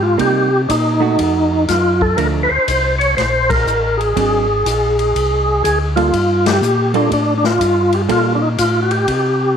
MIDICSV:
0, 0, Header, 1, 5, 480
1, 0, Start_track
1, 0, Key_signature, -2, "minor"
1, 0, Tempo, 493827
1, 189, Time_signature, 4, 2, 24, 8
1, 9301, End_track
2, 0, Start_track
2, 0, Title_t, "Tonewheel organ"
2, 0, Program_c, 0, 16
2, 25, Note_on_c, 0, 65, 86
2, 178, Note_off_c, 0, 65, 0
2, 201, Note_on_c, 0, 67, 91
2, 600, Note_off_c, 0, 67, 0
2, 668, Note_on_c, 0, 62, 59
2, 688, Note_on_c, 0, 63, 84
2, 693, Note_off_c, 0, 62, 0
2, 1604, Note_off_c, 0, 63, 0
2, 1640, Note_on_c, 0, 65, 84
2, 1961, Note_on_c, 0, 69, 90
2, 1964, Note_off_c, 0, 65, 0
2, 2110, Note_off_c, 0, 69, 0
2, 2111, Note_on_c, 0, 70, 93
2, 2214, Note_off_c, 0, 70, 0
2, 2364, Note_on_c, 0, 71, 64
2, 2420, Note_on_c, 0, 72, 93
2, 2444, Note_off_c, 0, 71, 0
2, 2874, Note_off_c, 0, 72, 0
2, 2902, Note_on_c, 0, 73, 95
2, 3061, Note_off_c, 0, 73, 0
2, 3079, Note_on_c, 0, 72, 95
2, 3397, Note_on_c, 0, 70, 109
2, 3405, Note_off_c, 0, 72, 0
2, 3861, Note_on_c, 0, 68, 97
2, 3891, Note_off_c, 0, 70, 0
2, 5471, Note_off_c, 0, 68, 0
2, 5483, Note_on_c, 0, 68, 93
2, 5624, Note_off_c, 0, 68, 0
2, 5793, Note_on_c, 0, 65, 90
2, 6285, Note_on_c, 0, 67, 93
2, 6288, Note_off_c, 0, 65, 0
2, 6725, Note_off_c, 0, 67, 0
2, 6761, Note_on_c, 0, 62, 79
2, 6910, Note_off_c, 0, 62, 0
2, 6934, Note_on_c, 0, 62, 83
2, 7136, Note_off_c, 0, 62, 0
2, 7170, Note_on_c, 0, 62, 65
2, 7246, Note_off_c, 0, 62, 0
2, 7247, Note_on_c, 0, 65, 93
2, 7722, Note_on_c, 0, 67, 82
2, 7732, Note_off_c, 0, 65, 0
2, 7793, Note_off_c, 0, 67, 0
2, 7884, Note_on_c, 0, 65, 93
2, 8098, Note_off_c, 0, 65, 0
2, 8118, Note_on_c, 0, 62, 53
2, 8180, Note_on_c, 0, 63, 72
2, 8192, Note_off_c, 0, 62, 0
2, 8255, Note_off_c, 0, 63, 0
2, 8348, Note_on_c, 0, 65, 82
2, 8558, Note_off_c, 0, 65, 0
2, 8577, Note_on_c, 0, 66, 58
2, 8661, Note_on_c, 0, 67, 78
2, 8666, Note_off_c, 0, 66, 0
2, 9301, Note_off_c, 0, 67, 0
2, 9301, End_track
3, 0, Start_track
3, 0, Title_t, "Hollow-body jazz guitar"
3, 0, Program_c, 1, 26
3, 171, Note_on_c, 1, 55, 51
3, 174, Note_on_c, 1, 58, 62
3, 188, Note_on_c, 1, 63, 63
3, 465, Note_off_c, 1, 55, 0
3, 467, Note_off_c, 1, 58, 0
3, 474, Note_off_c, 1, 63, 0
3, 975, Note_on_c, 1, 57, 57
3, 983, Note_on_c, 1, 63, 61
3, 990, Note_on_c, 1, 66, 65
3, 1595, Note_off_c, 1, 57, 0
3, 1599, Note_off_c, 1, 63, 0
3, 1603, Note_off_c, 1, 66, 0
3, 2118, Note_on_c, 1, 53, 51
3, 2124, Note_on_c, 1, 57, 56
3, 2128, Note_on_c, 1, 62, 60
3, 2402, Note_off_c, 1, 53, 0
3, 2405, Note_off_c, 1, 57, 0
3, 2407, Note_off_c, 1, 62, 0
3, 4047, Note_on_c, 1, 54, 50
3, 4049, Note_on_c, 1, 60, 57
3, 4055, Note_on_c, 1, 62, 58
3, 4328, Note_off_c, 1, 54, 0
3, 4329, Note_off_c, 1, 60, 0
3, 4332, Note_off_c, 1, 62, 0
3, 5799, Note_on_c, 1, 55, 59
3, 5804, Note_on_c, 1, 58, 56
3, 5804, Note_on_c, 1, 65, 54
3, 5807, Note_on_c, 1, 69, 59
3, 5945, Note_off_c, 1, 55, 0
3, 5948, Note_off_c, 1, 58, 0
3, 5948, Note_off_c, 1, 65, 0
3, 5949, Note_off_c, 1, 69, 0
3, 6746, Note_on_c, 1, 55, 72
3, 6755, Note_on_c, 1, 58, 71
3, 6757, Note_on_c, 1, 65, 79
3, 6759, Note_on_c, 1, 69, 80
3, 6897, Note_off_c, 1, 55, 0
3, 6902, Note_off_c, 1, 58, 0
3, 6903, Note_off_c, 1, 65, 0
3, 6904, Note_off_c, 1, 69, 0
3, 7859, Note_on_c, 1, 55, 65
3, 7864, Note_on_c, 1, 58, 59
3, 7868, Note_on_c, 1, 69, 70
3, 7870, Note_on_c, 1, 65, 72
3, 8149, Note_off_c, 1, 55, 0
3, 8152, Note_off_c, 1, 58, 0
3, 8154, Note_off_c, 1, 69, 0
3, 8155, Note_off_c, 1, 65, 0
3, 9301, End_track
4, 0, Start_track
4, 0, Title_t, "Tonewheel organ"
4, 0, Program_c, 2, 16
4, 0, Note_on_c, 2, 44, 79
4, 172, Note_off_c, 2, 44, 0
4, 185, Note_on_c, 2, 48, 82
4, 654, Note_off_c, 2, 48, 0
4, 674, Note_on_c, 2, 46, 83
4, 1140, Note_off_c, 2, 46, 0
4, 1153, Note_on_c, 2, 41, 78
4, 1620, Note_off_c, 2, 41, 0
4, 1635, Note_on_c, 2, 42, 77
4, 2102, Note_off_c, 2, 42, 0
4, 2115, Note_on_c, 2, 38, 79
4, 2410, Note_off_c, 2, 38, 0
4, 2428, Note_on_c, 2, 38, 38
4, 2512, Note_off_c, 2, 38, 0
4, 2598, Note_on_c, 2, 36, 82
4, 3065, Note_off_c, 2, 36, 0
4, 3083, Note_on_c, 2, 34, 77
4, 3548, Note_off_c, 2, 34, 0
4, 3554, Note_on_c, 2, 33, 80
4, 4023, Note_off_c, 2, 33, 0
4, 4044, Note_on_c, 2, 32, 81
4, 4508, Note_off_c, 2, 32, 0
4, 4526, Note_on_c, 2, 34, 82
4, 4989, Note_off_c, 2, 34, 0
4, 5003, Note_on_c, 2, 36, 81
4, 5468, Note_off_c, 2, 36, 0
4, 5486, Note_on_c, 2, 38, 86
4, 5948, Note_off_c, 2, 38, 0
4, 5962, Note_on_c, 2, 43, 83
4, 6425, Note_off_c, 2, 43, 0
4, 6430, Note_on_c, 2, 46, 92
4, 6898, Note_off_c, 2, 46, 0
4, 6910, Note_on_c, 2, 45, 78
4, 7377, Note_off_c, 2, 45, 0
4, 7390, Note_on_c, 2, 43, 81
4, 7856, Note_off_c, 2, 43, 0
4, 7866, Note_on_c, 2, 46, 79
4, 8333, Note_off_c, 2, 46, 0
4, 8346, Note_on_c, 2, 45, 88
4, 8812, Note_off_c, 2, 45, 0
4, 8826, Note_on_c, 2, 48, 75
4, 9290, Note_off_c, 2, 48, 0
4, 9301, End_track
5, 0, Start_track
5, 0, Title_t, "Drums"
5, 186, Note_on_c, 9, 51, 51
5, 191, Note_on_c, 9, 36, 17
5, 283, Note_off_c, 9, 51, 0
5, 288, Note_off_c, 9, 36, 0
5, 675, Note_on_c, 9, 36, 26
5, 675, Note_on_c, 9, 44, 56
5, 675, Note_on_c, 9, 51, 64
5, 772, Note_off_c, 9, 36, 0
5, 773, Note_off_c, 9, 44, 0
5, 773, Note_off_c, 9, 51, 0
5, 1153, Note_on_c, 9, 51, 56
5, 1156, Note_on_c, 9, 36, 23
5, 1250, Note_off_c, 9, 51, 0
5, 1253, Note_off_c, 9, 36, 0
5, 1637, Note_on_c, 9, 44, 52
5, 1637, Note_on_c, 9, 51, 59
5, 1639, Note_on_c, 9, 36, 23
5, 1639, Note_on_c, 9, 38, 34
5, 1734, Note_off_c, 9, 44, 0
5, 1734, Note_off_c, 9, 51, 0
5, 1736, Note_off_c, 9, 36, 0
5, 1736, Note_off_c, 9, 38, 0
5, 1956, Note_on_c, 9, 36, 51
5, 2053, Note_off_c, 9, 36, 0
5, 2116, Note_on_c, 9, 51, 58
5, 2120, Note_on_c, 9, 36, 17
5, 2213, Note_off_c, 9, 51, 0
5, 2217, Note_off_c, 9, 36, 0
5, 2602, Note_on_c, 9, 44, 49
5, 2602, Note_on_c, 9, 51, 66
5, 2603, Note_on_c, 9, 36, 24
5, 2699, Note_off_c, 9, 44, 0
5, 2699, Note_off_c, 9, 51, 0
5, 2701, Note_off_c, 9, 36, 0
5, 2926, Note_on_c, 9, 51, 42
5, 3023, Note_off_c, 9, 51, 0
5, 3087, Note_on_c, 9, 36, 20
5, 3090, Note_on_c, 9, 51, 49
5, 3091, Note_on_c, 9, 38, 34
5, 3185, Note_off_c, 9, 36, 0
5, 3187, Note_off_c, 9, 51, 0
5, 3189, Note_off_c, 9, 38, 0
5, 3404, Note_on_c, 9, 36, 75
5, 3407, Note_on_c, 9, 51, 67
5, 3501, Note_off_c, 9, 36, 0
5, 3504, Note_off_c, 9, 51, 0
5, 3569, Note_on_c, 9, 44, 55
5, 3666, Note_off_c, 9, 44, 0
5, 3893, Note_on_c, 9, 51, 41
5, 3990, Note_off_c, 9, 51, 0
5, 4049, Note_on_c, 9, 36, 23
5, 4050, Note_on_c, 9, 51, 59
5, 4146, Note_off_c, 9, 36, 0
5, 4147, Note_off_c, 9, 51, 0
5, 4528, Note_on_c, 9, 36, 19
5, 4531, Note_on_c, 9, 44, 59
5, 4531, Note_on_c, 9, 51, 70
5, 4625, Note_off_c, 9, 36, 0
5, 4628, Note_off_c, 9, 44, 0
5, 4628, Note_off_c, 9, 51, 0
5, 4849, Note_on_c, 9, 51, 43
5, 4947, Note_off_c, 9, 51, 0
5, 5009, Note_on_c, 9, 36, 20
5, 5014, Note_on_c, 9, 51, 57
5, 5106, Note_off_c, 9, 36, 0
5, 5111, Note_off_c, 9, 51, 0
5, 5486, Note_on_c, 9, 36, 22
5, 5490, Note_on_c, 9, 44, 50
5, 5490, Note_on_c, 9, 51, 59
5, 5583, Note_off_c, 9, 36, 0
5, 5587, Note_off_c, 9, 44, 0
5, 5587, Note_off_c, 9, 51, 0
5, 5803, Note_on_c, 9, 51, 42
5, 5900, Note_off_c, 9, 51, 0
5, 5962, Note_on_c, 9, 36, 20
5, 5963, Note_on_c, 9, 51, 57
5, 6059, Note_off_c, 9, 36, 0
5, 6060, Note_off_c, 9, 51, 0
5, 6280, Note_on_c, 9, 51, 68
5, 6282, Note_on_c, 9, 38, 82
5, 6377, Note_off_c, 9, 51, 0
5, 6379, Note_off_c, 9, 38, 0
5, 6438, Note_on_c, 9, 44, 56
5, 6535, Note_off_c, 9, 44, 0
5, 6747, Note_on_c, 9, 51, 42
5, 6844, Note_off_c, 9, 51, 0
5, 6916, Note_on_c, 9, 36, 20
5, 6916, Note_on_c, 9, 51, 56
5, 7013, Note_off_c, 9, 36, 0
5, 7014, Note_off_c, 9, 51, 0
5, 7232, Note_on_c, 9, 38, 52
5, 7329, Note_off_c, 9, 38, 0
5, 7394, Note_on_c, 9, 36, 20
5, 7395, Note_on_c, 9, 44, 51
5, 7395, Note_on_c, 9, 51, 61
5, 7491, Note_off_c, 9, 36, 0
5, 7493, Note_off_c, 9, 44, 0
5, 7493, Note_off_c, 9, 51, 0
5, 7703, Note_on_c, 9, 51, 42
5, 7800, Note_off_c, 9, 51, 0
5, 7865, Note_on_c, 9, 51, 58
5, 7870, Note_on_c, 9, 36, 17
5, 7963, Note_off_c, 9, 51, 0
5, 7968, Note_off_c, 9, 36, 0
5, 8343, Note_on_c, 9, 44, 54
5, 8343, Note_on_c, 9, 51, 59
5, 8349, Note_on_c, 9, 36, 18
5, 8440, Note_off_c, 9, 44, 0
5, 8440, Note_off_c, 9, 51, 0
5, 8446, Note_off_c, 9, 36, 0
5, 8658, Note_on_c, 9, 51, 43
5, 8755, Note_off_c, 9, 51, 0
5, 8823, Note_on_c, 9, 51, 57
5, 8827, Note_on_c, 9, 36, 22
5, 8920, Note_off_c, 9, 51, 0
5, 8924, Note_off_c, 9, 36, 0
5, 9301, End_track
0, 0, End_of_file